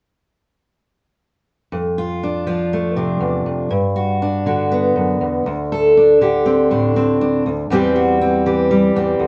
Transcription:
1.72 F2
1.98 F4
2.23 D4
2.47 F3 F4
2.73 A3
2.96 C3 D4
3.20 E2
3.46 F2
3.71 G2
3.96 F#4
4.22 D4
4.46 D3 F#4
4.72 B3
4.96 F#2
5.21 E2
5.46 D2
5.72 A4
5.97 D4
6.21 D3 G4
6.46 C4
6.71 A2 D4
6.96 C4
7.21 D4
7.46 D2
7.70 E2 E3 G3 C4 G4
7.96 F#4
8.21 C4
8.46 E3 G4
8.71 G3
8.96 E2 C4
9.19 D2

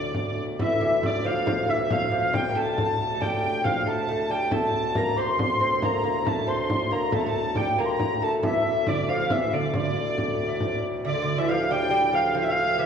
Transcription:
Already playing: D2 A2 D3 D5
0.14 frame drum
0.37 frame drum
0.58 D2 A2 E3 E5, frame drum
0.81 E3 E5, frame drum
1.02 D5 E5, frame drum
1.06 D5
1.24 F3 F5
1.46 F3, frame drum
1.68 E3 E5
1.90 F3 F5, frame drum
2.11 F3 F5, frame drum
2.18 E5
2.23 F5
2.33 G3 G5, frame drum
2.49 A#3
2.55 A3 A5
2.78 frame drum
3.00 A5
3.14 A3
3.21 G3 G5, frame drum
3.42 G5, frame drum
3.64 F3 F5, frame drum
3.86 A3 A5 A#5
3.92 A5
4.08 A3
4.30 G3 G5
4.51 A3 A5, frame drum
4.73 A5, frame drum
4.95 A#3 A#5, frame drum
5.17 C4 C6 D6, frame drum
5.21 C6
5.39 frame drum
5.60 C4 C6
5.82 D2 A2 A#3 A#5, frame drum
6.04 A#3, frame drum
6.25 A3 A5, frame drum
6.47 C4 C6
6.70 frame drum
6.91 A#3 A#5
7.12 A3 A5, frame drum
7.20 A#5
7.26 A3 A5
7.34 A#5, frame drum
7.41 A5
7.55 G3 G5, frame drum
7.78 A#3 A#5
7.85 C6
7.92 A#5
8.00 frame drum
8.22 A3 A5
8.43 E3 E5 F5, frame drum
8.48 E5
8.66 frame drum
8.87 D3 D5, frame drum
9.09 F3 F5
9.30 E3 E5, frame drum
9.53 D3 D5
9.73 D3 D5, frame drum
9.95 frame drum
10.18 frame drum
10.39 frame drum
10.48 E5
10.57 D5, frame drum
10.66 C5
10.73 D5
11.05 D2 A2 D3 D5 E5
11.10 D5
11.14 D3
11.22 D3
11.38 E3 E5
11.48 F3 F5
11.70 G3 G5
11.91 G3
12.13 F3 F5
12.34 F3 F5
12.43 E5
12.49 F3 F5
12.78 E3 E5

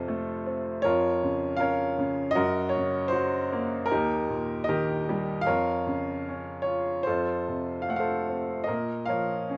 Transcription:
Already playing: F2 C3 F4 A4 C5
0.08 A3
0.46 C4
0.82 F2 F4 A#4 C#5
1.23 C#3
1.57 A#4 F5
1.61 C#4 C#5
1.99 C#3
2.31 D#5
2.35 F#2 F#4 A#4
2.69 C#5
2.77 C#3
3.08 C5
3.12 F#3 F#4
3.52 A#3
3.86 A#4
3.91 D#2 D#4 G4
4.29 A#2
4.64 D#5
4.69 D#3 G4 A#4
5.09 G3
5.41 F5
5.46 F2 A#4 C#5
5.87 C#3
6.29 C#4
6.62 C#5
6.67 F4
7.03 F4 A4 C5
7.09 F2
7.48 C3
7.82 F5
7.89 A3 F#5
7.96 A4 C5 F5
8.29 C4
8.64 A#4 D#5
8.68 A#2
9.06 F3 A#4 C#5 F5
9.49 C#4

